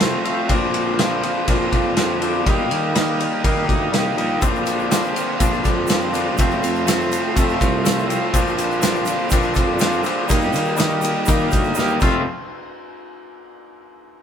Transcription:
Already playing: tuba C2
0.00 overdriven electric guitar F3 A3 C4 F4, snare, ride
0.24 overdriven electric guitar F3 A3 C4 F4, ride
0.49 tuba A#1, overdriven electric guitar A#2 D3 A#3 D4 F4, clean electric guitar F3 C4, kick, ride
0.74 ride
0.98 overdriven electric guitar A#2 D3 A#3 D4 F4, clean electric guitar F3 C4, snare, ride
1.23 overdriven electric guitar A#3 D4 F4, ride
1.48 tuba A#1, overdriven electric guitar D3 A#3 D4 F4, clean electric guitar F3 C4, kick, ride
1.72 tuba F2, clean electric guitar C4 D4, kick, ride
1.96 overdriven electric guitar D3 A#3 D4 F4, clean electric guitar F3 C4, snare, ride
2.21 overdriven electric guitar A#3 D4 F4, clean electric guitar C4, ride
2.46 tuba D#2, overdriven electric guitar D#3 A#3 D#4 G4, clean electric guitar G3, kick, ride
2.70 tuba D#3, ride
2.94 overdriven electric guitar D#3 A#3 D#4 G4, clean electric guitar G3, snare, ride
3.19 overdriven electric guitar A#3 D#4 G4, ride
3.43 overdriven electric guitar D#3 A#3 D#4 G4, tuba D#3, clean electric guitar G3, kick, ride
3.67 tuba D2, clean electric guitar A#3 D#4, kick, ride
3.91 tuba C2, overdriven electric guitar D#3 A#3 D#4 G4, clean electric guitar G3, snare, ride
4.16 tuba A#1, overdriven electric guitar A#3 D#4 G4, ride
4.41 tuba A#1, overdriven electric guitar A#2 D3 A#3 D4 F4, clean electric guitar F3 C4, string machine A#4 D5 C6, kick, ride, shaker
4.55 shaker
4.66 ride, shaker
4.79 shaker
4.90 overdriven electric guitar A#2 D3 A#3 D4 F4, clean electric guitar F3 C4, snare, ride, shaker
5.04 shaker
5.15 overdriven electric guitar A#3 D4 F4, ride, shaker
5.39 tuba A#1, overdriven electric guitar D3 A#3 D4 F4, clean electric guitar F3 C4, kick, ride, shaker
5.53 shaker
5.64 tuba F2, clean electric guitar C4 D4, kick, ride, shaker
5.87 overdriven electric guitar D3 A#3 D4 F4, clean electric guitar F3 C4, snare, ride, shaker
6.01 shaker
6.13 overdriven electric guitar A#3 D4 F4, clean electric guitar C4, ride, shaker
6.37 tuba F1, overdriven electric guitar F2 C3 F3 A3 C4 F4, string machine A4 F5 C6, kick, ride, shaker
6.51 shaker
6.62 tuba F2, ride, shaker
6.75 shaker
6.86 overdriven electric guitar F2 C3 F3 A3 C4 F4, snare, ride, shaker
7.00 shaker
7.10 overdriven electric guitar F3 A3 C4 F4, ride, shaker
7.35 tuba F2, overdriven electric guitar F3 A3 C4 F4, kick, ride, shaker
7.49 shaker
7.61 tuba C2, clean electric guitar A3 C4, kick, ride, shaker
7.84 overdriven electric guitar F3 A3 C4 F4, snare, ride, shaker
7.98 shaker
8.08 overdriven electric guitar F3 A3 C4 F4, ride, shaker
8.32 tuba A#1, overdriven electric guitar A#2 D3 A#3 D4 F4, clean electric guitar F3 C4, string machine A#4 D5, kick, ride, shaker
8.47 shaker
8.58 ride, shaker
8.71 shaker
8.81 overdriven electric guitar A#2 D3 A#3 D4 F4, clean electric guitar F3 C4, snare, ride, shaker
8.95 shaker
9.05 overdriven electric guitar A#3 D4 F4, ride, shaker
9.30 tuba A#1, overdriven electric guitar D3 A#3 D4 F4, clean electric guitar F3 C4, kick, ride, shaker
9.42 shaker
9.55 tuba F2, clean electric guitar C4 D4, kick, ride, shaker
9.79 overdriven electric guitar D3 A#3 D4 F4, clean electric guitar F3 C4, snare, ride, shaker
9.92 shaker
10.04 overdriven electric guitar A#3 D4 F4, clean electric guitar C4, ride, shaker
10.27 tuba D#2, overdriven electric guitar D#3 A#3 D#4 G4, clean electric guitar G3, string machine G4 D#5 A#5, kick, ride, shaker
10.41 shaker
10.53 tuba D#3, ride, shaker
10.65 shaker
10.77 overdriven electric guitar D#3 A#3 D#4 G4, clean electric guitar G3, snare, ride, shaker
10.89 shaker
11.02 overdriven electric guitar A#3 D#4 G4, ride, shaker
11.26 overdriven electric guitar D#3 A#3 D#4 G4, tuba D#3, clean electric guitar G3, kick, ride, shaker
11.51 tuba D2, clean electric guitar A#3 D#4, kick, ride, shaker
11.63 shaker
11.75 tuba D#2, overdriven electric guitar D#3 A#3 D#4 G4, clean electric guitar G3, snare, shaker
11.88 shaker
11.99 tuba F1, overdriven electric guitar F2 C3 F3 A3 C4 F4, string machine F3 C4 A4, kick, crash, shaker

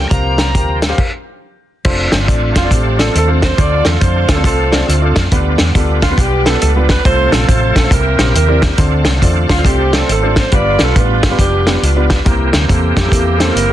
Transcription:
Already playing: tonewheel organ F3 A#3 G4
0.10 fingered electric bass C2, grand piano C3 G4 A#4 C5 F5, tonewheel organ C4, electric slide guitar A#5, kick, closed hi-hat
0.38 snare, closed hi-hat
0.54 fingered electric bass D2, grand piano G4 A#4 C5 G5, kick, closed hi-hat
0.82 snare, closed hi-hat
0.89 grand piano G4 A#4 C5 F5
0.98 kick, crash
1.85 fingered electric bass F1, tonewheel organ A3 C4 D4 F4, grand piano C4 D4 F4 A4 C5, kick, crash
2.12 fingered electric bass G1, snare, closed hi-hat
2.27 fingered electric bass A1, grand piano C4 D4 F4 A4 D5, kick, closed hi-hat
2.55 fingered electric bass F1, saxophone section F4, kick, snare, closed hi-hat
2.63 grand piano C4 D4 F4 A4 D5
2.71 fingered electric bass A1, saxophone section C4 D4 G4, kick, closed hi-hat
2.98 grand piano C4 D4 F4 A4 D5, saxophone section A4, snare, closed hi-hat
3.15 fingered electric bass D#2, saxophone section A4, closed hi-hat
3.27 grand piano C4 D4 F4 A4 C5
3.42 saxophone section C5, kick, snare, closed hi-hat
3.57 fingered electric bass D2, grand piano D3 C4 D4 F4 A4 C5, saxophone section F4 A4 D5, kick, closed hi-hat
3.85 fingered electric bass E2, saxophone section A4, snare, closed hi-hat
4.00 fingered electric bass F2, grand piano C4 D4 F4 A4 C5, saxophone section C5, kick, closed hi-hat
4.28 fingered electric bass D2, saxophone section A4, kick, snare, closed hi-hat
4.36 grand piano C4 D4 F4 A4 C5
4.44 fingered electric bass C2, saxophone section C4 F4 A4, kick, closed hi-hat
4.71 grand piano C4 D4 F4 A4 D5, snare, closed hi-hat
4.88 fingered electric bass D2, saxophone section A3 C4 F4, closed hi-hat
5.02 grand piano C4 D4 F4 A4 D5
5.16 fingered electric bass F2, kick, snare, closed hi-hat
5.31 fingered electric bass D2, grand piano D3 B3 D4 F4 G4 B4, tonewheel organ G3 B3, kick, closed hi-hat
5.58 fingered electric bass E2, snare, closed hi-hat
5.75 fingered electric bass D2, grand piano B3 D4 F4 G4 A4, kick, closed hi-hat
6.02 saxophone section F4, kick, snare, closed hi-hat
6.10 grand piano B3 D4 F4 G4 B4
6.18 fingered electric bass B1, saxophone section B3 G4, kick, closed hi-hat
6.45 grand piano B3 D4 F4 G4 B4, saxophone section A4, snare, closed hi-hat
6.61 fingered electric bass C#2, saxophone section A4, closed hi-hat
6.76 grand piano B3 D4 F4 G4 B4
6.89 saxophone section B4, kick, snare, closed hi-hat
7.05 fingered electric bass C2, grand piano C3 A3 C4 F4 A4 C5, tonewheel organ F3 A3 C4 A4, saxophone section F4 A4 C5, kick, closed hi-hat
7.32 fingered electric bass A#1, saxophone section A4, snare, closed hi-hat
7.48 fingered electric bass A1, grand piano A3 C4 F4 A4 C5, saxophone section C5, kick, closed hi-hat
7.76 fingered electric bass A#1, saxophone section A4, kick, snare, closed hi-hat
7.84 grand piano A3 C4 F4 A4 C5
7.91 fingered electric bass C2, grand piano C3, tonewheel organ A#3 C4 E4 G4, saxophone section E4 G4 A#4, kick, closed hi-hat
8.19 fingered electric bass A#1, grand piano C4 E4 G4 A#4 C5, snare, closed hi-hat
8.35 fingered electric bass D#2, saxophone section E4 G4 A#4, closed hi-hat
8.48 grand piano C4 E4 G4 A#4 D5
8.62 kick, snare, closed hi-hat
8.78 fingered electric bass D2, grand piano D3 C4 D4 F4 A4 C5, tonewheel organ A3 D4 F4, kick, closed hi-hat
9.05 fingered electric bass C2, snare, closed hi-hat
9.22 fingered electric bass E2, grand piano C4 D4 F4 A4 D5, kick, closed hi-hat
9.49 fingered electric bass D2, saxophone section F4, kick, snare, closed hi-hat
9.58 grand piano C4 D4 F4 A4 C5
9.65 fingered electric bass C2, saxophone section C4 G4, kick, closed hi-hat
9.93 grand piano C4 D4 F4 A4 D5, saxophone section A4, snare, closed hi-hat
10.09 fingered electric bass G#1, saxophone section A4, closed hi-hat
10.23 grand piano C4 D4 F4 A4 C5
10.36 saxophone section C5, kick, snare, closed hi-hat
10.52 fingered electric bass G1, grand piano G2 B3 D4 F4 G4 B4, tonewheel organ G3 B3, saxophone section F4 B4 D5, kick, closed hi-hat
10.79 fingered electric bass B1, snare, closed hi-hat
10.83 saxophone section A4
10.95 fingered electric bass A1, grand piano B3 D4 F4 G4 B4, saxophone section B4, kick, closed hi-hat
11.23 saxophone section G4, kick, snare, closed hi-hat
11.31 grand piano B3 D4 F4 G4 B4
11.38 fingered electric bass F1, saxophone section B3 D4 G4, kick, closed hi-hat
11.66 grand piano B3 D4 F4 G4 B4, snare, closed hi-hat
11.83 fingered electric bass C#2, saxophone section B3 D4 F4, closed hi-hat
11.96 grand piano B3 D4 F4 G4 B4
12.10 kick, snare, closed hi-hat
12.25 fingered electric bass C2, grand piano C3 A#3 C4 E4 G4 A#4, tonewheel organ E3 A#3 C4 G4, kick, closed hi-hat
12.53 fingered electric bass D2, snare, closed hi-hat
12.68 fingered electric bass E2, grand piano A#3 C4 E4 G4 A4, kick, closed hi-hat
12.97 fingered electric bass F2, saxophone section A#3 E4 G4, kick, snare, closed hi-hat
13.04 grand piano A#3 C4 E4 G4 A4
13.12 fingered electric bass E2, kick, closed hi-hat
13.39 grand piano A#3 C4 E4 G4 C5, saxophone section A4, snare, closed hi-hat
13.54 fingered electric bass F#1, saxophone section A#4, closed hi-hat
13.69 grand piano A#3 C4 E4 G4 A#4

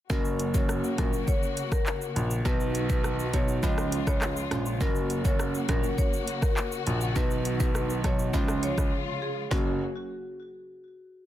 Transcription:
0.10 grand piano F#1, string section C#3 A#3 F#4, synth pluck F#3 A#3 C#4 F#4, marimba A#4, kick, shaker
0.25 shaker
0.39 closed hi-hat, shaker
0.54 synth pluck F#3 A#3 C#4 F#4, marimba C#5, kick, shaker
0.69 cross-stick, shaker
0.84 shaker
0.98 grand piano A#1, synth pluck F#3 A#3 C#4 F#4, marimba A#4, kick, cross-stick, closed hi-hat, shaker
1.13 shaker
1.28 marimba C#5, kick, shaker
1.43 shaker
1.57 closed hi-hat, shaker
1.72 marimba A#4, kick, cross-stick, shaker
1.86 clap, shaker
2.02 shaker
2.16 grand piano A#1, closed hi-hat, shaker
2.31 shaker
2.45 grand piano B1, string section D#3 B3 F#4, synth pluck F#3 B3 D#4 F#4, marimba B4, kick, shaker
2.60 shaker
2.75 closed hi-hat, shaker
2.89 synth pluck F#3 B3 D#4 F#4, marimba B4, kick, shaker
3.04 cross-stick, shaker
3.19 shaker
3.33 grand piano B1, synth pluck F#3 B3 D#4 F#4, marimba C#5, kick, closed hi-hat, shaker
3.48 shaker
3.63 grand piano C#2, string section C#3 G#3 F4, synth pluck F3 G#3 C#4 F4, marimba D#5, kick, shaker
3.78 cross-stick, shaker
3.92 closed hi-hat, shaker
4.07 grand piano C#2, marimba C#5, kick, cross-stick, shaker
4.22 cross-stick, clap, shaker
4.37 shaker
4.51 grand piano A#1, synth pluck F3 G#3 C#4 F4, cross-stick, closed hi-hat, shaker
4.66 shaker
4.81 grand piano F#1, synth pluck F#3 A#3 C#4 F#4, string section A#3 F#4, marimba A#4, kick, shaker
4.95 shaker
5.10 closed hi-hat, shaker
5.25 synth pluck F#3 A#3 C#4 F#4, marimba C#5, kick, shaker
5.40 cross-stick, shaker
5.55 shaker
5.69 grand piano A#1, synth pluck F#3 A#3 C#4 F#4, marimba A#4, kick, cross-stick, closed hi-hat, shaker
5.84 shaker
5.98 marimba C#5, kick, shaker
6.13 shaker
6.27 closed hi-hat, shaker
6.42 marimba A#4, kick, cross-stick, shaker
6.57 clap, shaker
6.72 shaker
6.87 grand piano A#1, closed hi-hat, shaker
7.01 shaker
7.16 grand piano B1, string section D#3 B3, synth pluck F#3 B3 D#4 F#4, marimba B4, kick, shaker
7.31 shaker
7.45 closed hi-hat, shaker
7.60 synth pluck F#3 B3 D#4 F#4, marimba B4, kick, shaker
7.75 cross-stick, shaker
7.90 shaker
8.04 grand piano B1, synth pluck F#3 B3 D#4 F#4, marimba C#5, kick, cross-stick, closed hi-hat, shaker
8.19 shaker
8.33 grand piano C#2, string section C#3 G#3 F4, synth pluck F3 G#3 C#4 F4, kick, shaker
8.48 cross-stick, shaker
8.63 marimba C#5, closed hi-hat, shaker
8.78 grand piano C#2, kick, cross-stick, shaker
9.22 marimba G#4
9.51 grand piano F#1, string section C#3 A#3 F#4, synth pluck F#3 A#3 C#4 F#4, marimba F#4, kick, snare

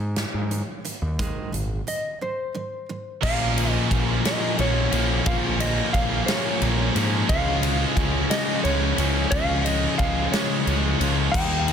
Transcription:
Already playing: picked electric bass G#2, steel-string acoustic guitar D#3
0.16 steel-string acoustic guitar G#2 D#3, snare, closed hi-hat
0.34 picked electric bass G#2
0.51 steel-string acoustic guitar G#2 D#3, closed hi-hat
0.85 steel-string acoustic guitar G#2 D#3, closed hi-hat
1.02 picked electric bass D#2
1.19 steel-string acoustic guitar G#2 D#3 G#3, kick, closed hi-hat
1.52 picked electric bass G#1, steel-string acoustic guitar G#2 D#3, closed hi-hat
1.87 steel-string acoustic guitar G#2 D#3, clean electric guitar D#5, closed hi-hat
2.21 steel-string acoustic guitar G#2 D#3, clean electric guitar C5
2.54 steel-string acoustic guitar G#2 D#3
2.89 steel-string acoustic guitar G#2 D#3
3.22 picked electric bass A#1, distorted electric guitar A#2 F3 A#3 C#4, clean electric guitar F5, kick, crash
3.56 distorted electric guitar F3 A#3 C#4, ride
3.71 clean electric guitar D#5
3.91 picked electric bass A#1, kick, ride
4.23 distorted electric guitar A#2 F3 A#3 C#4, clean electric guitar D#5, snare, ride
4.58 picked electric bass A#1, distorted electric guitar A#2 F3 A#3 C#4, clean electric guitar C#5, ride
4.92 picked electric bass A#1, distorted electric guitar A#2 F3 A#3 C#4, ride
5.25 picked electric bass A#1, distorted electric guitar A#2 F3 A#3 C#4, clean electric guitar F5, kick, ride
5.60 distorted electric guitar F3 A#3 C#4, clean electric guitar D#5, ride
5.93 picked electric bass A#1, clean electric guitar F5, kick, ride
6.26 distorted electric guitar A#2 F3 A#3 C#4, clean electric guitar C#5, snare, ride
6.61 picked electric bass A#1, distorted electric guitar A#2 F3 A#3 C#4, ride
6.92 picked electric bass G#2, distorted electric guitar C#4, clean electric guitar C5, ride
6.96 distorted electric guitar A#2 F3 A#3
7.29 picked electric bass C#2, distorted electric guitar C#3 F3 G#3 C#4, clean electric guitar F5, kick, ride
7.62 distorted electric guitar F3 G#3 C#4, ride
7.96 picked electric bass C#2, kick, ride
8.30 distorted electric guitar C#3 F3 G#3 C#4, clean electric guitar D#5, snare, ride
8.64 picked electric bass C#2, distorted electric guitar C#3 F3 G#3 C#4, clean electric guitar C#5, ride
8.98 picked electric bass C#2, distorted electric guitar C#3 F3 G#3 C#4, ride
9.31 picked electric bass C#2, distorted electric guitar C#3 F3 G#3 C#4, clean electric guitar F5, kick, ride
9.65 distorted electric guitar F3 G#3 C#4, clean electric guitar D#5, ride
9.98 picked electric bass C#2, clean electric guitar F5, kick, ride
10.31 distorted electric guitar C#3 F3 G#3 C#4, clean electric guitar C#5, snare, ride
10.66 picked electric bass C#2, distorted electric guitar C#3 F3 G#3 C#4, ride
11.00 picked electric bass C#2, distorted electric guitar C#3 F3 G#3 C#4, ride
11.32 picked electric bass D#2, distorted electric guitar D#3 G3 A#3 D#4, clean electric guitar G5, kick, crash
11.67 distorted electric guitar G3 A#3 D#4, ride

